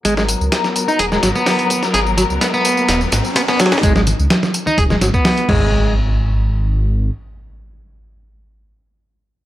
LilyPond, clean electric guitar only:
\new Staff \with { instrumentName = "Clean electric guitar" } { \time 4/4 \key gis \minor \tempo 4 = 127 gis16 gis16 r4 r16 dis'16 gis'16 gis16 fis16 b4 r16 | gis'16 r16 fis16 r16 b16 b4 r8. b16 b16 fis16 cis'16 | gis16 gis16 r4 r16 dis'16 gis'16 gis16 fis16 b8. gis8~ | gis8 r2. r8 |
r1 | }